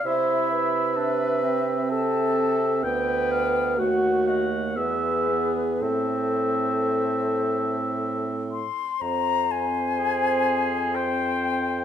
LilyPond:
<<
  \new Staff \with { instrumentName = "Flute" } { \time 3/4 \key a \minor \tempo 4 = 62 e''8 r8 e''4 a''4 | g''4 fis''8 dis''8 b'4 | c''2~ c''8 c'''8 | \key f \minor bes''8 aes''4. g''4 | }
  \new Staff \with { instrumentName = "Oboe" } { \time 3/4 \key a \minor e''4 e''4 e''4 | g''8 f''8 fis''8 fis''8 e''8 r8 | e''2~ e''8 r8 | \key f \minor r4 aes'4 c''4 | }
  \new Staff \with { instrumentName = "French horn" } { \time 3/4 \key a \minor c''8 b'4. a'4 | b'4 fis'8 r8 gis'4 | a'2~ a'8 r8 | \key f \minor c'2. | }
  \new Staff \with { instrumentName = "Clarinet" } { \time 3/4 \key a \minor e'4 d'8 c'4. | b4 a4 b8 b8 | c'2~ c'8 r8 | \key f \minor c''2. | }
  \new Staff \with { instrumentName = "Bassoon" } { \clef bass \time 3/4 \key a \minor c2. | d,4 dis,4 e,4 | a,2~ a,8 r8 | \key f \minor f,2. | }
>>